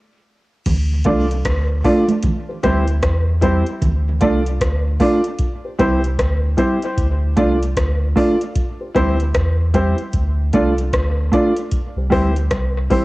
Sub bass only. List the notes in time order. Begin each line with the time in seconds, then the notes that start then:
0.66 D2
1.06 C2
1.45 D2
2.64 D2
3.03 E2
3.82 D2
4.22 C2
4.61 D2
5.80 C2
6.19 D2
6.98 D2
7.37 C2
7.77 D2
8.96 D2
9.35 E2
10.14 D2
10.54 C2
10.93 D2
11.96 C2
12.12 D2
12.51 C2
12.91 A1